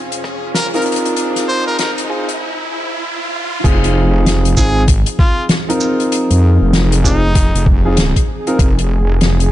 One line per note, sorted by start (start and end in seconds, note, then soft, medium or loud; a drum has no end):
0.00 2.37 F2 medium
0.00 2.37 C3 medium
0.00 2.37 F4 medium
0.00 2.41 F4 medium
0.00 2.37 G#4 medium
0.00 2.40 C5 medium
0.00 2.41 G#5 medium
0.00 riser medium
0.12 closed hi-hat medium
0.24 kick loud
0.24 cross-stick soft
0.54 0.67 A#4 loud
0.54 snare loud
0.54 closed hi-hat medium
0.74 2.07 C4 medium
0.74 2.07 D#4 medium
0.74 2.07 F4 medium
0.74 2.07 A#4 medium
0.74 0.82 A#4 medium
0.74 closed hi-hat soft
0.82 closed hi-hat soft
0.86 closed hi-hat soft
0.92 closed hi-hat medium
0.96 closed hi-hat medium
1.05 closed hi-hat medium
1.16 closed hi-hat medium
1.36 snare soft
1.36 closed hi-hat medium
1.48 1.63 C5 loud
1.67 1.75 A#4 medium
1.79 1.91 A#4 medium
1.79 snare loud
1.79 closed hi-hat medium
1.98 cross-stick soft
1.98 closed hi-hat medium
2.09 2.26 C4 medium
2.09 2.25 D#4 medium
2.09 2.26 F4 medium
2.09 2.25 G#4 medium
2.09 kick medium
2.29 closed hi-hat medium
3.64 4.55 F1 loud
3.64 9.52 F3 medium
3.64 4.52 C4 loud
3.64 9.52 C4 medium
3.64 4.52 D#4 medium
3.64 9.52 D#4 medium
3.64 4.52 F4 medium
3.64 4.52 G#4 loud
3.64 9.52 G#4 medium
3.64 kick loud
3.64 closed hi-hat medium
3.64 crash loud
3.84 closed hi-hat medium
4.26 snare loud
4.26 closed hi-hat loud
4.45 closed hi-hat medium
4.57 5.04 G#1 medium
4.57 4.80 C4 medium
4.57 4.80 D#4 medium
4.57 4.80 F4 medium
4.57 4.80 G#4 loud
4.57 4.84 G#4 medium
4.57 kick medium
4.57 shaker medium
4.88 kick loud
4.88 closed hi-hat loud
5.06 closed hi-hat medium
5.19 5.46 F4 medium
5.19 kick loud
5.19 cross-stick medium
5.49 snare loud
5.49 closed hi-hat medium
5.69 7.02 C4 medium
5.69 7.02 D#4 medium
5.69 7.02 F4 medium
5.69 7.02 A#4 medium
5.69 closed hi-hat medium
5.80 shaker medium
6.00 closed hi-hat medium
6.12 closed hi-hat medium
6.30 6.59 F2 loud
6.30 closed hi-hat medium
6.61 7.51 F1 loud
6.73 snare loud
6.73 closed hi-hat medium
6.92 cross-stick soft
6.92 closed hi-hat medium
7.04 7.20 C4 medium
7.04 7.20 D#4 medium
7.04 7.67 D#4 medium
7.04 7.20 F4 medium
7.04 7.20 G#4 medium
7.04 kick medium
7.04 shaker medium
7.35 kick loud
7.35 closed hi-hat loud
7.55 8.13 F1 medium
7.55 closed hi-hat medium
7.66 kick loud
7.85 7.95 C4 medium
7.85 7.95 D#4 medium
7.85 7.95 F4 medium
7.85 7.95 G#4 medium
7.97 snare loud
7.97 closed hi-hat medium
8.16 kick medium
8.16 closed hi-hat medium
8.47 8.66 C4 medium
8.47 8.66 D#4 medium
8.47 8.65 F4 medium
8.47 8.66 A#4 medium
8.47 closed hi-hat medium
8.59 9.50 F1 loud
8.59 kick loud
8.59 closed hi-hat medium
8.79 closed hi-hat medium
9.21 snare loud
9.21 closed hi-hat medium
9.40 closed hi-hat medium